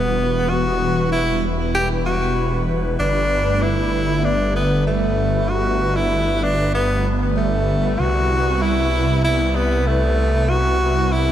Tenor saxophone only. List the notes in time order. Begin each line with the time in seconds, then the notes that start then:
Already playing: B3
0.50 F#4
1.12 E4
1.75 G4
2.06 F#4
3.00 D4
3.62 E4
4.24 D4
4.56 B3
4.87 A3
5.49 F#4
5.96 E4
6.43 D4
6.75 B3
7.37 A3
7.99 F#4
8.62 E4
9.24 E4
9.55 B3
9.87 A3
10.49 F#4
11.12 E4